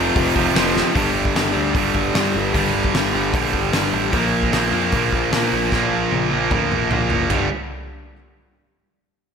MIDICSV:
0, 0, Header, 1, 5, 480
1, 0, Start_track
1, 0, Key_signature, -2, "minor"
1, 0, Tempo, 397088
1, 1152, Time_signature, 4, 2, 24, 8
1, 11299, End_track
2, 0, Start_track
2, 0, Title_t, "Distorted electric guitar"
2, 0, Program_c, 0, 30
2, 0, Note_on_c, 0, 41, 115
2, 0, Note_on_c, 0, 48, 108
2, 0, Note_on_c, 0, 53, 109
2, 403, Note_off_c, 0, 53, 0
2, 417, Note_on_c, 0, 53, 90
2, 420, Note_off_c, 0, 41, 0
2, 430, Note_off_c, 0, 48, 0
2, 446, Note_on_c, 0, 48, 71
2, 466, Note_on_c, 0, 41, 61
2, 645, Note_off_c, 0, 41, 0
2, 650, Note_off_c, 0, 53, 0
2, 665, Note_off_c, 0, 48, 0
2, 2104, Note_on_c, 0, 43, 86
2, 2125, Note_on_c, 0, 50, 88
2, 2147, Note_on_c, 0, 55, 85
2, 3048, Note_off_c, 0, 43, 0
2, 3064, Note_off_c, 0, 50, 0
2, 3074, Note_off_c, 0, 55, 0
2, 4037, Note_on_c, 0, 43, 75
2, 4055, Note_on_c, 0, 50, 86
2, 4076, Note_on_c, 0, 55, 79
2, 4972, Note_off_c, 0, 50, 0
2, 4981, Note_off_c, 0, 43, 0
2, 5001, Note_off_c, 0, 55, 0
2, 5952, Note_on_c, 0, 46, 75
2, 5975, Note_on_c, 0, 53, 85
2, 6000, Note_on_c, 0, 58, 84
2, 6899, Note_off_c, 0, 46, 0
2, 6911, Note_off_c, 0, 53, 0
2, 6952, Note_off_c, 0, 58, 0
2, 7874, Note_on_c, 0, 46, 78
2, 7897, Note_on_c, 0, 53, 73
2, 7914, Note_on_c, 0, 58, 90
2, 8821, Note_off_c, 0, 46, 0
2, 8832, Note_off_c, 0, 53, 0
2, 8841, Note_off_c, 0, 58, 0
2, 11299, End_track
3, 0, Start_track
3, 0, Title_t, "Overdriven electric guitar"
3, 0, Program_c, 1, 29
3, 0, Note_on_c, 1, 41, 71
3, 0, Note_on_c, 1, 48, 92
3, 0, Note_on_c, 1, 53, 93
3, 638, Note_off_c, 1, 41, 0
3, 652, Note_on_c, 1, 41, 84
3, 653, Note_off_c, 1, 53, 0
3, 655, Note_off_c, 1, 48, 0
3, 669, Note_on_c, 1, 48, 90
3, 686, Note_on_c, 1, 53, 85
3, 1117, Note_off_c, 1, 41, 0
3, 1122, Note_on_c, 1, 43, 71
3, 1134, Note_off_c, 1, 48, 0
3, 1139, Note_on_c, 1, 50, 101
3, 1144, Note_off_c, 1, 53, 0
3, 1154, Note_on_c, 1, 55, 82
3, 1837, Note_off_c, 1, 55, 0
3, 1842, Note_on_c, 1, 55, 88
3, 1850, Note_off_c, 1, 50, 0
3, 1865, Note_on_c, 1, 50, 72
3, 1872, Note_off_c, 1, 43, 0
3, 1877, Note_on_c, 1, 43, 64
3, 2561, Note_off_c, 1, 43, 0
3, 2562, Note_off_c, 1, 55, 0
3, 2573, Note_off_c, 1, 50, 0
3, 2576, Note_on_c, 1, 43, 72
3, 2596, Note_on_c, 1, 50, 80
3, 2612, Note_on_c, 1, 55, 94
3, 3045, Note_off_c, 1, 43, 0
3, 3059, Note_off_c, 1, 50, 0
3, 3059, Note_on_c, 1, 43, 87
3, 3067, Note_off_c, 1, 55, 0
3, 3078, Note_on_c, 1, 50, 73
3, 3099, Note_on_c, 1, 55, 98
3, 3769, Note_off_c, 1, 55, 0
3, 3771, Note_off_c, 1, 43, 0
3, 3781, Note_off_c, 1, 50, 0
3, 3784, Note_on_c, 1, 55, 76
3, 3802, Note_on_c, 1, 50, 72
3, 3817, Note_on_c, 1, 43, 76
3, 4480, Note_off_c, 1, 43, 0
3, 4494, Note_off_c, 1, 55, 0
3, 4495, Note_on_c, 1, 43, 77
3, 4496, Note_off_c, 1, 50, 0
3, 4511, Note_on_c, 1, 50, 81
3, 4527, Note_on_c, 1, 55, 92
3, 4959, Note_off_c, 1, 50, 0
3, 4964, Note_on_c, 1, 46, 70
3, 4969, Note_off_c, 1, 43, 0
3, 4984, Note_off_c, 1, 55, 0
3, 4989, Note_on_c, 1, 53, 85
3, 5002, Note_on_c, 1, 58, 86
3, 5691, Note_off_c, 1, 58, 0
3, 5696, Note_on_c, 1, 58, 73
3, 5712, Note_off_c, 1, 53, 0
3, 5717, Note_on_c, 1, 53, 76
3, 5726, Note_off_c, 1, 46, 0
3, 5731, Note_on_c, 1, 46, 68
3, 6407, Note_off_c, 1, 46, 0
3, 6422, Note_off_c, 1, 53, 0
3, 6422, Note_on_c, 1, 46, 74
3, 6442, Note_on_c, 1, 53, 72
3, 6455, Note_off_c, 1, 58, 0
3, 6460, Note_on_c, 1, 58, 74
3, 6880, Note_off_c, 1, 46, 0
3, 6895, Note_on_c, 1, 46, 79
3, 6904, Note_off_c, 1, 53, 0
3, 6916, Note_on_c, 1, 53, 84
3, 6927, Note_off_c, 1, 58, 0
3, 6932, Note_on_c, 1, 58, 75
3, 7599, Note_off_c, 1, 58, 0
3, 7611, Note_off_c, 1, 46, 0
3, 7614, Note_on_c, 1, 58, 71
3, 7622, Note_off_c, 1, 53, 0
3, 7636, Note_on_c, 1, 53, 79
3, 7648, Note_on_c, 1, 46, 70
3, 8324, Note_off_c, 1, 46, 0
3, 8331, Note_off_c, 1, 58, 0
3, 8338, Note_on_c, 1, 46, 77
3, 8341, Note_off_c, 1, 53, 0
3, 8356, Note_on_c, 1, 53, 81
3, 8374, Note_on_c, 1, 58, 89
3, 8813, Note_off_c, 1, 46, 0
3, 8818, Note_on_c, 1, 43, 82
3, 8822, Note_off_c, 1, 53, 0
3, 8830, Note_off_c, 1, 58, 0
3, 8830, Note_on_c, 1, 50, 86
3, 8833, Note_on_c, 1, 55, 94
3, 9019, Note_off_c, 1, 43, 0
3, 9025, Note_off_c, 1, 50, 0
3, 9026, Note_off_c, 1, 55, 0
3, 11299, End_track
4, 0, Start_track
4, 0, Title_t, "Picked electric bass"
4, 0, Program_c, 2, 34
4, 190, Note_on_c, 2, 29, 111
4, 349, Note_off_c, 2, 29, 0
4, 431, Note_on_c, 2, 29, 96
4, 589, Note_off_c, 2, 29, 0
4, 667, Note_on_c, 2, 29, 89
4, 985, Note_off_c, 2, 29, 0
4, 1155, Note_on_c, 2, 31, 93
4, 1575, Note_off_c, 2, 31, 0
4, 1633, Note_on_c, 2, 31, 79
4, 1843, Note_off_c, 2, 31, 0
4, 1881, Note_on_c, 2, 38, 85
4, 2087, Note_off_c, 2, 38, 0
4, 2110, Note_on_c, 2, 31, 84
4, 2322, Note_off_c, 2, 31, 0
4, 2350, Note_on_c, 2, 31, 86
4, 2561, Note_off_c, 2, 31, 0
4, 2595, Note_on_c, 2, 43, 73
4, 2804, Note_off_c, 2, 43, 0
4, 2834, Note_on_c, 2, 31, 93
4, 3044, Note_off_c, 2, 31, 0
4, 3070, Note_on_c, 2, 31, 87
4, 3281, Note_off_c, 2, 31, 0
4, 3303, Note_on_c, 2, 31, 90
4, 3518, Note_off_c, 2, 31, 0
4, 3555, Note_on_c, 2, 31, 87
4, 3765, Note_off_c, 2, 31, 0
4, 3797, Note_on_c, 2, 31, 81
4, 4006, Note_off_c, 2, 31, 0
4, 4029, Note_on_c, 2, 34, 90
4, 4242, Note_off_c, 2, 34, 0
4, 4266, Note_on_c, 2, 31, 85
4, 4480, Note_off_c, 2, 31, 0
4, 4518, Note_on_c, 2, 31, 79
4, 4727, Note_off_c, 2, 31, 0
4, 4749, Note_on_c, 2, 33, 92
4, 4962, Note_off_c, 2, 33, 0
4, 4997, Note_on_c, 2, 34, 92
4, 5418, Note_off_c, 2, 34, 0
4, 5472, Note_on_c, 2, 34, 80
4, 5684, Note_off_c, 2, 34, 0
4, 5706, Note_on_c, 2, 41, 87
4, 5921, Note_off_c, 2, 41, 0
4, 5958, Note_on_c, 2, 34, 90
4, 6167, Note_off_c, 2, 34, 0
4, 6192, Note_on_c, 2, 34, 86
4, 6404, Note_off_c, 2, 34, 0
4, 6445, Note_on_c, 2, 46, 75
4, 6652, Note_off_c, 2, 46, 0
4, 6681, Note_on_c, 2, 34, 86
4, 6890, Note_off_c, 2, 34, 0
4, 6916, Note_on_c, 2, 34, 93
4, 7126, Note_off_c, 2, 34, 0
4, 7169, Note_on_c, 2, 34, 69
4, 7374, Note_off_c, 2, 34, 0
4, 7403, Note_on_c, 2, 34, 72
4, 7611, Note_off_c, 2, 34, 0
4, 7653, Note_on_c, 2, 34, 83
4, 7857, Note_off_c, 2, 34, 0
4, 7870, Note_on_c, 2, 38, 86
4, 8084, Note_off_c, 2, 38, 0
4, 8109, Note_on_c, 2, 34, 82
4, 8323, Note_off_c, 2, 34, 0
4, 8346, Note_on_c, 2, 34, 76
4, 8562, Note_off_c, 2, 34, 0
4, 8584, Note_on_c, 2, 30, 81
4, 8801, Note_off_c, 2, 30, 0
4, 8827, Note_on_c, 2, 31, 85
4, 9054, Note_off_c, 2, 31, 0
4, 11299, End_track
5, 0, Start_track
5, 0, Title_t, "Drums"
5, 191, Note_on_c, 9, 46, 79
5, 193, Note_on_c, 9, 36, 127
5, 312, Note_off_c, 9, 46, 0
5, 314, Note_off_c, 9, 36, 0
5, 433, Note_on_c, 9, 36, 92
5, 554, Note_off_c, 9, 36, 0
5, 679, Note_on_c, 9, 46, 78
5, 682, Note_on_c, 9, 38, 127
5, 800, Note_off_c, 9, 46, 0
5, 802, Note_off_c, 9, 38, 0
5, 925, Note_on_c, 9, 38, 73
5, 1046, Note_off_c, 9, 38, 0
5, 1155, Note_on_c, 9, 36, 111
5, 1159, Note_on_c, 9, 46, 56
5, 1276, Note_off_c, 9, 36, 0
5, 1280, Note_off_c, 9, 46, 0
5, 1513, Note_on_c, 9, 36, 79
5, 1634, Note_off_c, 9, 36, 0
5, 1644, Note_on_c, 9, 46, 49
5, 1647, Note_on_c, 9, 38, 104
5, 1765, Note_off_c, 9, 46, 0
5, 1768, Note_off_c, 9, 38, 0
5, 2113, Note_on_c, 9, 36, 117
5, 2117, Note_on_c, 9, 46, 57
5, 2234, Note_off_c, 9, 36, 0
5, 2237, Note_off_c, 9, 46, 0
5, 2353, Note_on_c, 9, 36, 79
5, 2474, Note_off_c, 9, 36, 0
5, 2599, Note_on_c, 9, 46, 59
5, 2601, Note_on_c, 9, 38, 110
5, 2720, Note_off_c, 9, 46, 0
5, 2722, Note_off_c, 9, 38, 0
5, 3076, Note_on_c, 9, 36, 106
5, 3078, Note_on_c, 9, 46, 61
5, 3197, Note_off_c, 9, 36, 0
5, 3199, Note_off_c, 9, 46, 0
5, 3438, Note_on_c, 9, 36, 76
5, 3559, Note_off_c, 9, 36, 0
5, 3562, Note_on_c, 9, 46, 53
5, 3564, Note_on_c, 9, 38, 102
5, 3682, Note_off_c, 9, 46, 0
5, 3685, Note_off_c, 9, 38, 0
5, 4034, Note_on_c, 9, 36, 123
5, 4038, Note_on_c, 9, 46, 63
5, 4154, Note_off_c, 9, 36, 0
5, 4159, Note_off_c, 9, 46, 0
5, 4273, Note_on_c, 9, 36, 80
5, 4393, Note_off_c, 9, 36, 0
5, 4511, Note_on_c, 9, 46, 55
5, 4514, Note_on_c, 9, 38, 104
5, 4632, Note_off_c, 9, 46, 0
5, 4635, Note_off_c, 9, 38, 0
5, 4992, Note_on_c, 9, 46, 55
5, 4994, Note_on_c, 9, 36, 117
5, 5113, Note_off_c, 9, 46, 0
5, 5114, Note_off_c, 9, 36, 0
5, 5355, Note_on_c, 9, 36, 73
5, 5475, Note_on_c, 9, 46, 50
5, 5476, Note_off_c, 9, 36, 0
5, 5477, Note_on_c, 9, 38, 92
5, 5596, Note_off_c, 9, 46, 0
5, 5598, Note_off_c, 9, 38, 0
5, 5948, Note_on_c, 9, 46, 54
5, 5955, Note_on_c, 9, 36, 113
5, 6069, Note_off_c, 9, 46, 0
5, 6075, Note_off_c, 9, 36, 0
5, 6195, Note_on_c, 9, 36, 79
5, 6316, Note_off_c, 9, 36, 0
5, 6438, Note_on_c, 9, 46, 55
5, 6440, Note_on_c, 9, 38, 108
5, 6559, Note_off_c, 9, 46, 0
5, 6561, Note_off_c, 9, 38, 0
5, 6916, Note_on_c, 9, 36, 102
5, 6916, Note_on_c, 9, 38, 53
5, 7037, Note_off_c, 9, 36, 0
5, 7037, Note_off_c, 9, 38, 0
5, 7397, Note_on_c, 9, 48, 56
5, 7518, Note_off_c, 9, 48, 0
5, 7868, Note_on_c, 9, 47, 78
5, 7871, Note_on_c, 9, 36, 118
5, 7989, Note_off_c, 9, 47, 0
5, 7992, Note_off_c, 9, 36, 0
5, 8118, Note_on_c, 9, 45, 70
5, 8239, Note_off_c, 9, 45, 0
5, 8350, Note_on_c, 9, 43, 95
5, 8471, Note_off_c, 9, 43, 0
5, 8584, Note_on_c, 9, 43, 78
5, 8704, Note_off_c, 9, 43, 0
5, 8823, Note_on_c, 9, 43, 99
5, 8823, Note_on_c, 9, 52, 82
5, 8828, Note_on_c, 9, 36, 90
5, 8944, Note_off_c, 9, 43, 0
5, 8944, Note_off_c, 9, 52, 0
5, 8949, Note_off_c, 9, 36, 0
5, 11299, End_track
0, 0, End_of_file